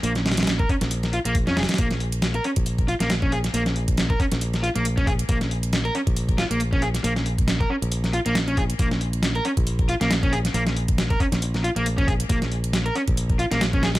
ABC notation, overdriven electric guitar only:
X:1
M:4/4
L:1/16
Q:"Swing 16ths" 1/4=137
K:Bbm
V:1 name="Overdriven electric guitar"
B, z4 B D z3 F B, z D A z | B, z4 B D z3 F B, z D A z | B, z4 B D z3 F B, z D A z | B, z4 B D z3 F B, z D A z |
B, z4 B D z3 F B, z D A z | B, z4 B D z3 F B, z D A z | B, z4 B D z3 F B, z D A z | B, z4 B D z3 F B, z D A z |]